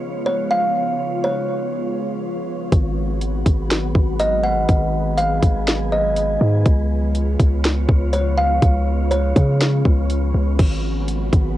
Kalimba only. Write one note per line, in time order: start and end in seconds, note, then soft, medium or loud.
0.26 0.49 C#5 medium
0.51 0.74 F5 medium
1.24 2.19 C#5 medium
4.20 4.43 D#5 medium
4.44 4.67 F#5 medium
5.18 5.88 F5 medium
5.92 6.62 D#5 medium
8.13 8.36 C#5 medium
8.38 8.61 F5 medium
9.11 10.06 C#5 medium